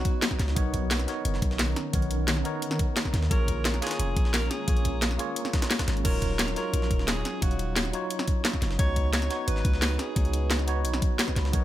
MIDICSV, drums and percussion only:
0, 0, Header, 1, 2, 480
1, 0, Start_track
1, 0, Tempo, 342857
1, 790, Time_signature, 4, 2, 24, 8
1, 16300, End_track
2, 0, Start_track
2, 0, Title_t, "Drums"
2, 70, Note_on_c, 9, 42, 74
2, 72, Note_on_c, 9, 36, 116
2, 210, Note_off_c, 9, 42, 0
2, 212, Note_off_c, 9, 36, 0
2, 311, Note_on_c, 9, 38, 124
2, 311, Note_on_c, 9, 42, 87
2, 312, Note_off_c, 9, 38, 0
2, 312, Note_off_c, 9, 42, 0
2, 312, Note_on_c, 9, 38, 124
2, 312, Note_on_c, 9, 42, 90
2, 431, Note_on_c, 9, 40, 33
2, 432, Note_on_c, 9, 36, 62
2, 452, Note_off_c, 9, 38, 0
2, 452, Note_off_c, 9, 42, 0
2, 552, Note_on_c, 9, 38, 38
2, 552, Note_on_c, 9, 42, 62
2, 554, Note_off_c, 9, 38, 0
2, 554, Note_off_c, 9, 42, 0
2, 554, Note_on_c, 9, 38, 48
2, 554, Note_on_c, 9, 42, 69
2, 571, Note_off_c, 9, 40, 0
2, 572, Note_off_c, 9, 36, 0
2, 673, Note_off_c, 9, 38, 0
2, 673, Note_on_c, 9, 38, 49
2, 694, Note_off_c, 9, 42, 0
2, 790, Note_on_c, 9, 42, 92
2, 792, Note_on_c, 9, 36, 124
2, 793, Note_off_c, 9, 42, 0
2, 793, Note_on_c, 9, 42, 92
2, 813, Note_off_c, 9, 38, 0
2, 932, Note_off_c, 9, 36, 0
2, 933, Note_off_c, 9, 42, 0
2, 1031, Note_on_c, 9, 42, 71
2, 1032, Note_off_c, 9, 42, 0
2, 1032, Note_on_c, 9, 36, 61
2, 1032, Note_on_c, 9, 42, 66
2, 1172, Note_off_c, 9, 36, 0
2, 1172, Note_off_c, 9, 42, 0
2, 1271, Note_on_c, 9, 38, 112
2, 1271, Note_on_c, 9, 42, 86
2, 1272, Note_off_c, 9, 38, 0
2, 1272, Note_off_c, 9, 42, 0
2, 1272, Note_on_c, 9, 38, 122
2, 1272, Note_on_c, 9, 42, 90
2, 1393, Note_on_c, 9, 40, 33
2, 1395, Note_off_c, 9, 42, 0
2, 1395, Note_on_c, 9, 42, 47
2, 1412, Note_off_c, 9, 38, 0
2, 1512, Note_off_c, 9, 42, 0
2, 1512, Note_on_c, 9, 42, 62
2, 1514, Note_off_c, 9, 42, 0
2, 1514, Note_on_c, 9, 38, 46
2, 1514, Note_on_c, 9, 42, 71
2, 1533, Note_off_c, 9, 40, 0
2, 1654, Note_off_c, 9, 38, 0
2, 1654, Note_off_c, 9, 42, 0
2, 1751, Note_on_c, 9, 42, 88
2, 1753, Note_off_c, 9, 42, 0
2, 1753, Note_on_c, 9, 42, 87
2, 1874, Note_on_c, 9, 38, 41
2, 1893, Note_off_c, 9, 42, 0
2, 1990, Note_on_c, 9, 42, 66
2, 1991, Note_on_c, 9, 36, 112
2, 1993, Note_off_c, 9, 42, 0
2, 1993, Note_on_c, 9, 42, 72
2, 2014, Note_off_c, 9, 38, 0
2, 2115, Note_on_c, 9, 38, 45
2, 2131, Note_off_c, 9, 36, 0
2, 2133, Note_off_c, 9, 42, 0
2, 2229, Note_off_c, 9, 38, 0
2, 2229, Note_on_c, 9, 38, 122
2, 2229, Note_on_c, 9, 42, 91
2, 2233, Note_off_c, 9, 38, 0
2, 2233, Note_off_c, 9, 42, 0
2, 2233, Note_on_c, 9, 38, 117
2, 2233, Note_on_c, 9, 42, 89
2, 2373, Note_off_c, 9, 38, 0
2, 2373, Note_off_c, 9, 42, 0
2, 2470, Note_on_c, 9, 40, 44
2, 2470, Note_on_c, 9, 42, 63
2, 2471, Note_off_c, 9, 42, 0
2, 2471, Note_on_c, 9, 42, 64
2, 2610, Note_off_c, 9, 40, 0
2, 2611, Note_off_c, 9, 42, 0
2, 2708, Note_on_c, 9, 42, 94
2, 2710, Note_off_c, 9, 42, 0
2, 2710, Note_on_c, 9, 42, 87
2, 2711, Note_on_c, 9, 36, 120
2, 2832, Note_off_c, 9, 42, 0
2, 2832, Note_on_c, 9, 42, 46
2, 2851, Note_off_c, 9, 36, 0
2, 2949, Note_off_c, 9, 42, 0
2, 2949, Note_on_c, 9, 42, 69
2, 2951, Note_off_c, 9, 42, 0
2, 2951, Note_on_c, 9, 42, 69
2, 3091, Note_off_c, 9, 42, 0
2, 3190, Note_on_c, 9, 38, 118
2, 3190, Note_on_c, 9, 42, 86
2, 3313, Note_on_c, 9, 40, 31
2, 3330, Note_off_c, 9, 38, 0
2, 3330, Note_off_c, 9, 42, 0
2, 3431, Note_on_c, 9, 42, 65
2, 3432, Note_off_c, 9, 42, 0
2, 3432, Note_on_c, 9, 42, 71
2, 3453, Note_off_c, 9, 40, 0
2, 3572, Note_off_c, 9, 42, 0
2, 3671, Note_on_c, 9, 42, 92
2, 3674, Note_off_c, 9, 42, 0
2, 3674, Note_on_c, 9, 42, 87
2, 3793, Note_on_c, 9, 40, 52
2, 3814, Note_off_c, 9, 42, 0
2, 3911, Note_on_c, 9, 42, 68
2, 3912, Note_on_c, 9, 36, 107
2, 3913, Note_off_c, 9, 42, 0
2, 3913, Note_on_c, 9, 42, 72
2, 3933, Note_off_c, 9, 40, 0
2, 4052, Note_off_c, 9, 36, 0
2, 4053, Note_off_c, 9, 42, 0
2, 4152, Note_on_c, 9, 38, 118
2, 4152, Note_on_c, 9, 42, 92
2, 4273, Note_on_c, 9, 36, 61
2, 4274, Note_on_c, 9, 40, 31
2, 4292, Note_off_c, 9, 38, 0
2, 4292, Note_off_c, 9, 42, 0
2, 4392, Note_on_c, 9, 38, 35
2, 4392, Note_on_c, 9, 42, 65
2, 4393, Note_off_c, 9, 38, 0
2, 4393, Note_off_c, 9, 42, 0
2, 4393, Note_on_c, 9, 38, 49
2, 4393, Note_on_c, 9, 42, 67
2, 4413, Note_off_c, 9, 36, 0
2, 4414, Note_off_c, 9, 40, 0
2, 4516, Note_off_c, 9, 38, 0
2, 4516, Note_on_c, 9, 38, 51
2, 4533, Note_off_c, 9, 42, 0
2, 4632, Note_on_c, 9, 36, 116
2, 4634, Note_on_c, 9, 42, 99
2, 4635, Note_off_c, 9, 42, 0
2, 4635, Note_on_c, 9, 42, 92
2, 4656, Note_off_c, 9, 38, 0
2, 4772, Note_off_c, 9, 36, 0
2, 4775, Note_off_c, 9, 42, 0
2, 4872, Note_on_c, 9, 36, 58
2, 4873, Note_on_c, 9, 42, 71
2, 5012, Note_off_c, 9, 36, 0
2, 5013, Note_off_c, 9, 42, 0
2, 5112, Note_on_c, 9, 38, 114
2, 5112, Note_on_c, 9, 42, 94
2, 5113, Note_off_c, 9, 38, 0
2, 5113, Note_off_c, 9, 42, 0
2, 5113, Note_on_c, 9, 38, 117
2, 5113, Note_on_c, 9, 42, 87
2, 5234, Note_off_c, 9, 42, 0
2, 5234, Note_on_c, 9, 42, 47
2, 5235, Note_on_c, 9, 40, 31
2, 5253, Note_off_c, 9, 38, 0
2, 5351, Note_off_c, 9, 42, 0
2, 5351, Note_on_c, 9, 38, 96
2, 5351, Note_on_c, 9, 42, 72
2, 5353, Note_off_c, 9, 42, 0
2, 5353, Note_on_c, 9, 42, 67
2, 5375, Note_off_c, 9, 40, 0
2, 5413, Note_off_c, 9, 38, 0
2, 5413, Note_off_c, 9, 42, 0
2, 5413, Note_on_c, 9, 38, 97
2, 5413, Note_on_c, 9, 42, 70
2, 5472, Note_off_c, 9, 38, 0
2, 5472, Note_off_c, 9, 42, 0
2, 5472, Note_on_c, 9, 38, 106
2, 5472, Note_on_c, 9, 42, 83
2, 5593, Note_off_c, 9, 42, 0
2, 5593, Note_on_c, 9, 42, 92
2, 5594, Note_off_c, 9, 42, 0
2, 5594, Note_on_c, 9, 42, 100
2, 5612, Note_off_c, 9, 38, 0
2, 5734, Note_off_c, 9, 42, 0
2, 5831, Note_on_c, 9, 36, 103
2, 5832, Note_on_c, 9, 42, 71
2, 5953, Note_on_c, 9, 38, 45
2, 5971, Note_off_c, 9, 36, 0
2, 5972, Note_off_c, 9, 42, 0
2, 6072, Note_off_c, 9, 38, 0
2, 6072, Note_on_c, 9, 38, 120
2, 6072, Note_on_c, 9, 42, 93
2, 6073, Note_off_c, 9, 38, 0
2, 6073, Note_off_c, 9, 42, 0
2, 6073, Note_on_c, 9, 38, 114
2, 6073, Note_on_c, 9, 42, 96
2, 6213, Note_off_c, 9, 38, 0
2, 6213, Note_off_c, 9, 42, 0
2, 6311, Note_on_c, 9, 40, 47
2, 6311, Note_on_c, 9, 42, 68
2, 6451, Note_off_c, 9, 40, 0
2, 6451, Note_off_c, 9, 42, 0
2, 6549, Note_on_c, 9, 42, 101
2, 6550, Note_off_c, 9, 42, 0
2, 6550, Note_on_c, 9, 36, 119
2, 6550, Note_on_c, 9, 42, 91
2, 6672, Note_off_c, 9, 42, 0
2, 6672, Note_on_c, 9, 42, 45
2, 6690, Note_off_c, 9, 36, 0
2, 6789, Note_off_c, 9, 42, 0
2, 6789, Note_on_c, 9, 42, 72
2, 6790, Note_on_c, 9, 36, 59
2, 6791, Note_off_c, 9, 42, 0
2, 6791, Note_on_c, 9, 42, 68
2, 6930, Note_off_c, 9, 36, 0
2, 6931, Note_off_c, 9, 42, 0
2, 7028, Note_on_c, 9, 38, 118
2, 7028, Note_on_c, 9, 42, 87
2, 7029, Note_off_c, 9, 38, 0
2, 7029, Note_off_c, 9, 42, 0
2, 7029, Note_on_c, 9, 38, 117
2, 7029, Note_on_c, 9, 42, 96
2, 7152, Note_on_c, 9, 40, 34
2, 7169, Note_off_c, 9, 38, 0
2, 7169, Note_off_c, 9, 42, 0
2, 7270, Note_on_c, 9, 42, 72
2, 7292, Note_off_c, 9, 40, 0
2, 7410, Note_off_c, 9, 42, 0
2, 7509, Note_on_c, 9, 42, 99
2, 7511, Note_off_c, 9, 42, 0
2, 7511, Note_on_c, 9, 42, 90
2, 7629, Note_on_c, 9, 40, 57
2, 7651, Note_off_c, 9, 42, 0
2, 7749, Note_on_c, 9, 38, 114
2, 7749, Note_on_c, 9, 42, 80
2, 7750, Note_on_c, 9, 36, 108
2, 7769, Note_off_c, 9, 40, 0
2, 7870, Note_on_c, 9, 40, 33
2, 7872, Note_off_c, 9, 38, 0
2, 7872, Note_off_c, 9, 42, 0
2, 7872, Note_on_c, 9, 38, 115
2, 7872, Note_on_c, 9, 42, 88
2, 7890, Note_off_c, 9, 36, 0
2, 7988, Note_off_c, 9, 38, 0
2, 7988, Note_off_c, 9, 42, 0
2, 7988, Note_on_c, 9, 38, 117
2, 7988, Note_on_c, 9, 42, 99
2, 7989, Note_off_c, 9, 38, 0
2, 7989, Note_off_c, 9, 42, 0
2, 7989, Note_on_c, 9, 38, 106
2, 7989, Note_on_c, 9, 42, 85
2, 8010, Note_off_c, 9, 40, 0
2, 8111, Note_off_c, 9, 38, 0
2, 8111, Note_off_c, 9, 42, 0
2, 8111, Note_on_c, 9, 36, 60
2, 8111, Note_on_c, 9, 38, 104
2, 8111, Note_on_c, 9, 40, 33
2, 8111, Note_on_c, 9, 42, 78
2, 8229, Note_off_c, 9, 38, 0
2, 8229, Note_off_c, 9, 42, 0
2, 8229, Note_on_c, 9, 38, 35
2, 8229, Note_on_c, 9, 42, 69
2, 8230, Note_off_c, 9, 38, 0
2, 8230, Note_off_c, 9, 42, 0
2, 8230, Note_on_c, 9, 38, 101
2, 8230, Note_on_c, 9, 42, 77
2, 8251, Note_off_c, 9, 36, 0
2, 8251, Note_off_c, 9, 40, 0
2, 8355, Note_off_c, 9, 42, 0
2, 8355, Note_on_c, 9, 42, 42
2, 8370, Note_off_c, 9, 38, 0
2, 8468, Note_off_c, 9, 42, 0
2, 8468, Note_on_c, 9, 42, 100
2, 8468, Note_on_c, 9, 49, 78
2, 8470, Note_on_c, 9, 36, 125
2, 8472, Note_off_c, 9, 42, 0
2, 8472, Note_on_c, 9, 42, 93
2, 8608, Note_off_c, 9, 49, 0
2, 8610, Note_off_c, 9, 36, 0
2, 8612, Note_off_c, 9, 42, 0
2, 8708, Note_on_c, 9, 42, 69
2, 8710, Note_on_c, 9, 36, 61
2, 8711, Note_off_c, 9, 42, 0
2, 8711, Note_on_c, 9, 42, 70
2, 8850, Note_off_c, 9, 36, 0
2, 8851, Note_off_c, 9, 42, 0
2, 8948, Note_on_c, 9, 38, 119
2, 8948, Note_on_c, 9, 42, 99
2, 8952, Note_off_c, 9, 38, 0
2, 8952, Note_off_c, 9, 42, 0
2, 8952, Note_on_c, 9, 38, 115
2, 8952, Note_on_c, 9, 42, 87
2, 9069, Note_on_c, 9, 40, 36
2, 9073, Note_off_c, 9, 42, 0
2, 9073, Note_on_c, 9, 42, 46
2, 9092, Note_off_c, 9, 38, 0
2, 9189, Note_off_c, 9, 42, 0
2, 9189, Note_on_c, 9, 42, 68
2, 9193, Note_off_c, 9, 42, 0
2, 9193, Note_on_c, 9, 38, 47
2, 9193, Note_on_c, 9, 42, 74
2, 9209, Note_off_c, 9, 40, 0
2, 9333, Note_off_c, 9, 38, 0
2, 9333, Note_off_c, 9, 42, 0
2, 9430, Note_on_c, 9, 42, 96
2, 9431, Note_off_c, 9, 42, 0
2, 9431, Note_on_c, 9, 42, 89
2, 9552, Note_on_c, 9, 38, 41
2, 9571, Note_off_c, 9, 42, 0
2, 9669, Note_on_c, 9, 36, 112
2, 9670, Note_on_c, 9, 42, 73
2, 9671, Note_off_c, 9, 42, 0
2, 9671, Note_on_c, 9, 42, 69
2, 9692, Note_off_c, 9, 38, 0
2, 9792, Note_on_c, 9, 38, 44
2, 9809, Note_off_c, 9, 36, 0
2, 9811, Note_off_c, 9, 42, 0
2, 9909, Note_off_c, 9, 38, 0
2, 9909, Note_on_c, 9, 38, 124
2, 9909, Note_on_c, 9, 42, 92
2, 9911, Note_off_c, 9, 38, 0
2, 9911, Note_off_c, 9, 42, 0
2, 9911, Note_on_c, 9, 38, 123
2, 9911, Note_on_c, 9, 42, 97
2, 10051, Note_off_c, 9, 38, 0
2, 10051, Note_off_c, 9, 42, 0
2, 10152, Note_on_c, 9, 42, 68
2, 10153, Note_off_c, 9, 42, 0
2, 10153, Note_on_c, 9, 40, 49
2, 10153, Note_on_c, 9, 42, 69
2, 10293, Note_off_c, 9, 40, 0
2, 10293, Note_off_c, 9, 42, 0
2, 10389, Note_on_c, 9, 36, 122
2, 10390, Note_on_c, 9, 42, 94
2, 10391, Note_off_c, 9, 42, 0
2, 10391, Note_on_c, 9, 42, 89
2, 10514, Note_off_c, 9, 42, 0
2, 10514, Note_on_c, 9, 42, 45
2, 10529, Note_off_c, 9, 36, 0
2, 10630, Note_off_c, 9, 42, 0
2, 10630, Note_on_c, 9, 42, 72
2, 10631, Note_off_c, 9, 42, 0
2, 10631, Note_on_c, 9, 42, 66
2, 10771, Note_off_c, 9, 42, 0
2, 10869, Note_on_c, 9, 38, 115
2, 10869, Note_on_c, 9, 42, 87
2, 10990, Note_on_c, 9, 40, 34
2, 11009, Note_off_c, 9, 38, 0
2, 11009, Note_off_c, 9, 42, 0
2, 11108, Note_on_c, 9, 42, 66
2, 11112, Note_off_c, 9, 42, 0
2, 11112, Note_on_c, 9, 42, 70
2, 11130, Note_off_c, 9, 40, 0
2, 11252, Note_off_c, 9, 42, 0
2, 11347, Note_on_c, 9, 42, 98
2, 11349, Note_off_c, 9, 42, 0
2, 11349, Note_on_c, 9, 42, 88
2, 11468, Note_on_c, 9, 40, 61
2, 11489, Note_off_c, 9, 42, 0
2, 11585, Note_on_c, 9, 42, 66
2, 11589, Note_on_c, 9, 36, 111
2, 11590, Note_off_c, 9, 42, 0
2, 11590, Note_on_c, 9, 42, 71
2, 11608, Note_off_c, 9, 40, 0
2, 11729, Note_off_c, 9, 36, 0
2, 11730, Note_off_c, 9, 42, 0
2, 11826, Note_on_c, 9, 38, 122
2, 11826, Note_on_c, 9, 42, 93
2, 11827, Note_off_c, 9, 38, 0
2, 11827, Note_off_c, 9, 42, 0
2, 11827, Note_on_c, 9, 38, 123
2, 11827, Note_on_c, 9, 42, 90
2, 11948, Note_on_c, 9, 40, 35
2, 11949, Note_on_c, 9, 36, 65
2, 11967, Note_off_c, 9, 38, 0
2, 11967, Note_off_c, 9, 42, 0
2, 12066, Note_on_c, 9, 38, 38
2, 12066, Note_on_c, 9, 42, 66
2, 12069, Note_off_c, 9, 38, 0
2, 12069, Note_off_c, 9, 42, 0
2, 12069, Note_on_c, 9, 38, 47
2, 12069, Note_on_c, 9, 42, 68
2, 12088, Note_off_c, 9, 40, 0
2, 12089, Note_off_c, 9, 36, 0
2, 12189, Note_off_c, 9, 38, 0
2, 12189, Note_on_c, 9, 38, 50
2, 12209, Note_off_c, 9, 42, 0
2, 12308, Note_on_c, 9, 42, 89
2, 12309, Note_off_c, 9, 42, 0
2, 12309, Note_on_c, 9, 36, 125
2, 12309, Note_on_c, 9, 42, 88
2, 12329, Note_off_c, 9, 38, 0
2, 12449, Note_off_c, 9, 36, 0
2, 12449, Note_off_c, 9, 42, 0
2, 12548, Note_on_c, 9, 36, 65
2, 12548, Note_on_c, 9, 42, 73
2, 12688, Note_off_c, 9, 36, 0
2, 12688, Note_off_c, 9, 42, 0
2, 12787, Note_on_c, 9, 38, 111
2, 12787, Note_on_c, 9, 42, 89
2, 12788, Note_off_c, 9, 38, 0
2, 12788, Note_off_c, 9, 42, 0
2, 12788, Note_on_c, 9, 38, 124
2, 12788, Note_on_c, 9, 42, 93
2, 12909, Note_off_c, 9, 42, 0
2, 12909, Note_on_c, 9, 42, 49
2, 12910, Note_on_c, 9, 40, 34
2, 12928, Note_off_c, 9, 38, 0
2, 13027, Note_off_c, 9, 42, 0
2, 13027, Note_on_c, 9, 38, 48
2, 13027, Note_on_c, 9, 42, 71
2, 13029, Note_off_c, 9, 42, 0
2, 13029, Note_on_c, 9, 42, 66
2, 13050, Note_off_c, 9, 40, 0
2, 13167, Note_off_c, 9, 38, 0
2, 13169, Note_off_c, 9, 42, 0
2, 13268, Note_on_c, 9, 42, 91
2, 13386, Note_on_c, 9, 38, 40
2, 13408, Note_off_c, 9, 42, 0
2, 13506, Note_on_c, 9, 42, 74
2, 13508, Note_on_c, 9, 36, 117
2, 13509, Note_off_c, 9, 42, 0
2, 13509, Note_on_c, 9, 42, 66
2, 13526, Note_off_c, 9, 38, 0
2, 13630, Note_on_c, 9, 38, 43
2, 13648, Note_off_c, 9, 36, 0
2, 13649, Note_off_c, 9, 42, 0
2, 13748, Note_off_c, 9, 38, 0
2, 13748, Note_on_c, 9, 38, 127
2, 13748, Note_on_c, 9, 42, 89
2, 13750, Note_off_c, 9, 38, 0
2, 13750, Note_off_c, 9, 42, 0
2, 13750, Note_on_c, 9, 38, 125
2, 13750, Note_on_c, 9, 42, 93
2, 13890, Note_off_c, 9, 38, 0
2, 13890, Note_off_c, 9, 42, 0
2, 13987, Note_on_c, 9, 40, 51
2, 13987, Note_on_c, 9, 42, 62
2, 13989, Note_off_c, 9, 42, 0
2, 13989, Note_on_c, 9, 42, 69
2, 14127, Note_off_c, 9, 40, 0
2, 14129, Note_off_c, 9, 42, 0
2, 14226, Note_on_c, 9, 42, 89
2, 14228, Note_on_c, 9, 36, 124
2, 14229, Note_off_c, 9, 42, 0
2, 14229, Note_on_c, 9, 42, 89
2, 14350, Note_off_c, 9, 42, 0
2, 14350, Note_on_c, 9, 42, 46
2, 14368, Note_off_c, 9, 36, 0
2, 14469, Note_off_c, 9, 42, 0
2, 14469, Note_on_c, 9, 42, 64
2, 14470, Note_off_c, 9, 42, 0
2, 14470, Note_on_c, 9, 42, 70
2, 14610, Note_off_c, 9, 42, 0
2, 14707, Note_on_c, 9, 38, 121
2, 14707, Note_on_c, 9, 42, 87
2, 14709, Note_off_c, 9, 38, 0
2, 14709, Note_off_c, 9, 42, 0
2, 14709, Note_on_c, 9, 38, 115
2, 14709, Note_on_c, 9, 42, 86
2, 14830, Note_on_c, 9, 40, 34
2, 14849, Note_off_c, 9, 38, 0
2, 14849, Note_off_c, 9, 42, 0
2, 14946, Note_on_c, 9, 42, 61
2, 14950, Note_off_c, 9, 42, 0
2, 14950, Note_on_c, 9, 42, 70
2, 14970, Note_off_c, 9, 40, 0
2, 15090, Note_off_c, 9, 42, 0
2, 15186, Note_on_c, 9, 42, 90
2, 15192, Note_off_c, 9, 42, 0
2, 15192, Note_on_c, 9, 42, 90
2, 15309, Note_on_c, 9, 40, 54
2, 15332, Note_off_c, 9, 42, 0
2, 15430, Note_on_c, 9, 36, 117
2, 15430, Note_on_c, 9, 42, 73
2, 15449, Note_off_c, 9, 40, 0
2, 15570, Note_off_c, 9, 36, 0
2, 15570, Note_off_c, 9, 42, 0
2, 15668, Note_on_c, 9, 38, 121
2, 15668, Note_on_c, 9, 42, 93
2, 15790, Note_on_c, 9, 40, 32
2, 15791, Note_on_c, 9, 36, 64
2, 15808, Note_off_c, 9, 38, 0
2, 15808, Note_off_c, 9, 42, 0
2, 15909, Note_on_c, 9, 38, 47
2, 15909, Note_on_c, 9, 42, 66
2, 15930, Note_off_c, 9, 40, 0
2, 15931, Note_off_c, 9, 36, 0
2, 16032, Note_off_c, 9, 38, 0
2, 16032, Note_on_c, 9, 38, 52
2, 16049, Note_off_c, 9, 42, 0
2, 16147, Note_on_c, 9, 42, 90
2, 16150, Note_off_c, 9, 42, 0
2, 16150, Note_on_c, 9, 36, 120
2, 16150, Note_on_c, 9, 42, 88
2, 16172, Note_off_c, 9, 38, 0
2, 16290, Note_off_c, 9, 36, 0
2, 16290, Note_off_c, 9, 42, 0
2, 16300, End_track
0, 0, End_of_file